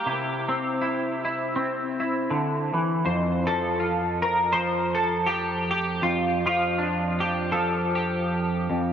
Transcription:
Already playing: G4
0.06 C3 E4
0.49 C4
0.81 E4
1.25 E4
1.56 C4
2.00 E4
2.30 D3
2.74 E3
3.05 F2 C5
3.47 F3 A4
3.80 F4
4.22 A#4
4.53 F3 C5
4.95 A4
5.26 G4
5.71 G4
6.02 F2 F4
6.46 F3 F4
6.78 D4
7.20 G4
7.52 F3 A4
7.95 G4
8.70 F2

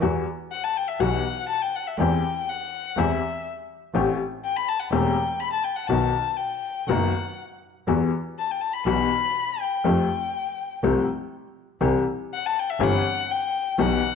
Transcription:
0.00 E2 E3 G3 B3 F#4
0.52 F#5
0.64 A5
0.77 G5
0.88 E5
1.00 B1 B2 E3 G3 B3 F#4 F#5
1.49 A5
1.62 G5
1.76 F#5
1.87 E5
1.98 E2 E3 G3 C4 G4 G5
2.49 F#5
2.96 E2 E3 G3 C4 G4 E5
3.94 A1 A2 E3 A3 C4 G4
4.44 G5
4.57 B5
4.68 A5
4.80 F#5
4.91 E1 E2 E3 A3 C4 G4 G5
5.40 B5
5.53 A5
5.64 G5
5.76 F#5
5.88 B1 B2 D#3 F#3 B3 F#4 A5
6.36 G5
6.88 F#1 F#2 D#3 F#3 B3 F#4 F#5
7.87 E2 E3 G3 B3 F#4
8.39 A5
8.51 G5
8.61 A5
8.73 B5
8.86 B1 B2 E3 G3 B3 F#4 B5
9.61 G5
9.84 F2 F3 A3 C4 G4
10.83 C2 C3 F3 A3 C4 G4
11.81 C2 C3 E3 G3 C4 G4
12.34 F#5
12.46 A5
12.59 G5
12.70 E5
12.79 G1 G2 E3 G3 C4 G4 F#5
13.31 G5
13.79 B1 B2 E3 G3 B3 G4 F#5

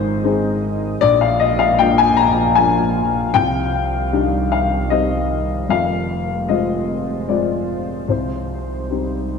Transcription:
Already playing: G#1 G#2 G#3 C4 D#4 G#4 A#4 C5 D#5
0.24 C4 D#4 G#4
1.01 A#1 F3 F4 D5 F5
1.21 F5
1.40 D#5
1.59 F5
1.79 A#3 D4 F4 G5
1.98 G#5
2.17 A#5
2.55 A#3 D4 F4 G#5
3.34 C2 D#3 G3 G5
4.13 G3 D4 D#4
4.52 F5
4.90 G3 C4 D#4 D#5
5.68 F1 F2 G#3 F4 C5 F5
6.49 G#3 C4 F4 D#5
7.28 G#3 C4 F4 D5
8.08 C2 G3 D#4 C5
8.90 G3 C4 D#4

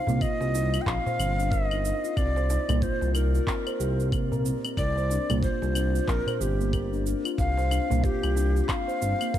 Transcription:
Already playing: F5
0.07 C2 A#3, darbuka ka, darbuka dum, cabasa
0.21 F4 D#5, kick, cabasa, claves
0.41 C2 F4, darbuka tek, cabasa
0.55 D#4, darbuka ka, cabasa
0.74 F4, cabasa, claves
0.82 G5
0.86 A#1 C4 F5, kick, clap, darbuka tek, cabasa
1.06 C5, darbuka dum, cabasa
1.19 G1 C4, cabasa, claves
1.39 D4, cabasa
1.51 A#4 D#5, kick, cabasa
1.71 D#4, cabasa, claves
1.85 D#4, cabasa
2.04 F4, cabasa
2.17 C2 C4 D5, kick, cabasa, claves
2.36 C5, darbuka tek, cabasa
2.50 D#4, darbuka tek, cabasa
2.69 C2 A#3, darbuka ka, darbuka dum, cabasa, claves
2.82 F4 C5, kick, cabasa
3.01 C2 F4, darbuka tek, cabasa
3.14 D#4 A#4, darbuka ka, cabasa, claves
3.35 F4, cabasa
3.47 C4, kick, clap, cabasa
3.67 C5, cabasa, claves
3.80 C2 G4, cabasa
3.99 C4, cabasa
4.12 A#3, kick, cabasa, claves
4.32 A#4, darbuka dum, cabasa
4.45 C4, cabasa
4.65 C4, cabasa, claves
4.77 C2 C4 D5, kick, cabasa, claves
4.96 C5, darbuka ka, darbuka tek, cabasa
5.10 D4, darbuka tek, cabasa
5.30 C2 A#3, darbuka ka, darbuka dum, cabasa, claves
5.43 F4 C5, kick, cabasa
5.62 C2 F4, darbuka tek, cabasa
5.75 D4, darbuka ka, cabasa, claves
5.95 F4, cabasa
6.08 A#1 C4 A#4, kick, clap, darbuka tek, cabasa
6.27 C5, darbuka dum, cabasa, claves
6.41 G1 C4 G4, cabasa
6.60 A#3, cabasa
6.73 A#4, kick, cabasa, claves
6.93 D4, cabasa
7.06 D4, cabasa
7.25 F4, cabasa, claves
7.38 C2 C4 F5, kick, cabasa
7.57 C5, darbuka tek, cabasa
7.71 D4, darbuka tek, cabasa, claves
7.90 C2 A#3, darbuka ka, darbuka dum, cabasa
8.04 F4 G4, kick, cabasa
8.23 C2 F4, darbuka tek, cabasa, claves
8.36 D4, darbuka ka, cabasa
8.55 F4, cabasa
8.64 G4
8.69 F5, kick, clap, cabasa, claves
8.88 C5, cabasa
9.01 G1 C4, cabasa
9.21 A#3, cabasa, claves
9.34 A#4, kick, cabasa

